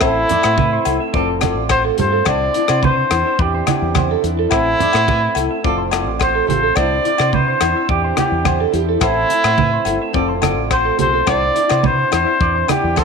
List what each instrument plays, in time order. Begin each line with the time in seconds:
Already playing: transistor combo organ C4
0.01 fingered electric bass A1, transistor combo organ A3 E4, nylon-string guitar C4 E4 A4, trumpet E4, clean electric guitar C5, kick, cross-stick, muted conga, low agogo
0.29 nylon-string guitar E4 A4, clean electric guitar D5, closed hi-hat, muted conga, low conga
0.43 fingered electric bass A2, clean electric guitar C5, cross-stick, low agogo
0.58 clean electric guitar B4, kick, high conga
0.73 clean electric guitar C5
0.85 fingered electric bass C2, nylon-string guitar E4 A4, closed hi-hat, low agogo
1.00 clean electric guitar E5
1.13 fingered electric bass F1, nylon-string guitar C4 F4 A4, transistor combo organ F4, clean electric guitar D5, kick, muted conga
1.41 nylon-string guitar A4, clean electric guitar D5, cross-stick, closed hi-hat, high conga, low agogo
1.46 nylon-string guitar F4
1.57 fingered electric bass A1
1.69 clean electric guitar C5, trumpet C5, kick, cross-stick, low agogo
1.84 clean electric guitar A4
1.98 fingered electric bass G2, clean electric guitar G4, nylon-string guitar A4, trumpet C5, closed hi-hat, muted conga, high conga
2.02 nylon-string guitar F4
2.12 clean electric guitar A4
2.25 fingered electric bass C2, nylon-string guitar G3 D4, transistor combo organ D4 E4, clean electric guitar C5, trumpet D5, kick, cross-stick, muted conga, low agogo
2.30 muted nylon-string guitar stroke
2.54 nylon-string guitar E4, clean electric guitar D5, closed hi-hat, muted conga
2.59 nylon-string guitar D4
2.68 fingered electric bass C3, clean electric guitar C5, cross-stick, low agogo
2.83 clean electric guitar B4, trumpet C5, kick, high conga
2.97 clean electric guitar C5
3.11 fingered electric bass E2, nylon-string guitar D4 E4, cross-stick, closed hi-hat, low agogo
3.26 clean electric guitar E5
3.39 fingered electric bass E2, trumpet G4, clean electric guitar D5, kick, muted conga
3.54 clean electric guitar C5
3.67 nylon-string guitar D4 E4, trumpet G4, clean electric guitar D5, cross-stick, closed hi-hat, high conga, low agogo
3.82 fingered electric bass E2
3.95 clean electric guitar C5, kick, cross-stick, high conga, low agogo
4.11 clean electric guitar A4
4.23 fingered electric bass E2, nylon-string guitar D4 E4, closed hi-hat, muted conga
4.39 clean electric guitar A4
4.51 fingered electric bass A1, transistor combo organ A3, nylon-string guitar C4 E4 A4, trumpet E4, clean electric guitar C5, kick, cross-stick, muted conga, low agogo
4.79 nylon-string guitar E4 A4, clean electric guitar D5, closed hi-hat, muted conga, low conga
4.93 fingered electric bass A2, clean electric guitar C5, cross-stick, low agogo
5.08 clean electric guitar B4, kick, high conga
5.22 muted clean electric guitar stroke
5.35 fingered electric bass C2, nylon-string guitar E4 A4, closed hi-hat, low agogo
5.51 clean electric guitar E5
5.64 fingered electric bass F1, nylon-string guitar C4 F4 A4, transistor combo organ C4 F4, clean electric guitar D5, kick, muted conga
5.78 clean electric guitar C5
5.91 nylon-string guitar F4 A4, clean electric guitar D5, cross-stick, closed hi-hat, low agogo
6.07 fingered electric bass A1
6.20 clean electric guitar C5, trumpet C5, kick, cross-stick, low agogo
6.35 clean electric guitar A4
6.47 fingered electric bass A1, nylon-string guitar F4 A4, clean electric guitar G4, trumpet C5, closed hi-hat, muted conga, high conga
6.63 clean electric guitar A4
6.76 fingered electric bass C2, nylon-string guitar G3 D4 E4, transistor combo organ D4 E4, clean electric guitar C5, trumpet D5, kick, cross-stick, low agogo
7.04 nylon-string guitar D4 E4, clean electric guitar D5, closed hi-hat, muted conga
7.18 fingered electric bass C3, clean electric guitar C5, cross-stick, low agogo
7.33 clean electric guitar B4, trumpet C5, kick, high conga
7.48 clean electric guitar C5
7.60 fingered electric bass E2, nylon-string guitar D4 E4, cross-stick, closed hi-hat, low agogo
7.76 clean electric guitar E5
7.89 fingered electric bass E2, trumpet G4, clean electric guitar D5, kick, muted conga
8.04 clean electric guitar C5
8.16 nylon-string guitar D4 E4, trumpet G4, clean electric guitar D5, cross-stick, closed hi-hat, high conga, low agogo
8.32 fingered electric bass E2
8.45 clean electric guitar C5, kick, cross-stick, high conga, low agogo
8.60 clean electric guitar A4
8.72 fingered electric bass E2, nylon-string guitar E4, clean electric guitar G4, closed hi-hat, muted conga
8.89 clean electric guitar A4
9.00 fingered electric bass A1, transistor combo organ A3, nylon-string guitar E4 A4, trumpet E4, clean electric guitar C5, muted nylon-string guitar stroke, kick, cross-stick, muted conga, low agogo
9.29 nylon-string guitar E4 A4, clean electric guitar E5, closed hi-hat, muted conga
9.44 fingered electric bass A2, clean electric guitar C5, cross-stick, low agogo
9.58 clean electric guitar B4, kick, high conga
9.73 clean electric guitar C5
9.85 fingered electric bass G1, nylon-string guitar E4 A4, closed hi-hat, low agogo
10.02 clean electric guitar E5
10.13 fingered electric bass F1, nylon-string guitar C4 F4 A4, transistor combo organ F4, clean electric guitar D5, kick, muted conga
10.29 clean electric guitar C5
10.42 nylon-string guitar F4 A4, clean electric guitar D5, cross-stick, closed hi-hat, high conga, low agogo
10.57 fingered electric bass A1
10.70 clean electric guitar C5, trumpet C5, kick, cross-stick, low agogo
10.85 clean electric guitar A4
10.98 fingered electric bass B1, nylon-string guitar F4 A4, clean electric guitar G4, trumpet C5, closed hi-hat, muted conga, high conga
11.14 clean electric guitar A4
11.27 fingered electric bass C2, nylon-string guitar G3 D4 E4, transistor combo organ D4 E4, clean electric guitar C5, trumpet D5, kick, cross-stick, muted conga, low agogo
11.54 nylon-string guitar D4 E4, clean electric guitar D5, closed hi-hat, muted conga
11.69 fingered electric bass C3, clean electric guitar C5, cross-stick, low agogo
11.83 clean electric guitar B4, trumpet C5, kick, high conga
11.98 clean electric guitar C5
12.11 fingered electric bass E2, nylon-string guitar D4 E4, trumpet C5, cross-stick, closed hi-hat, low agogo
12.26 clean electric guitar E5
12.40 fingered electric bass E2, clean electric guitar D5, kick, muted conga
12.56 clean electric guitar C5
12.68 nylon-string guitar D4 E4, trumpet G4, clean electric guitar D5, cross-stick, closed hi-hat, high conga, low agogo
12.84 fingered electric bass E2
12.96 trumpet A4, clean electric guitar C5, kick, cross-stick, high conga, low agogo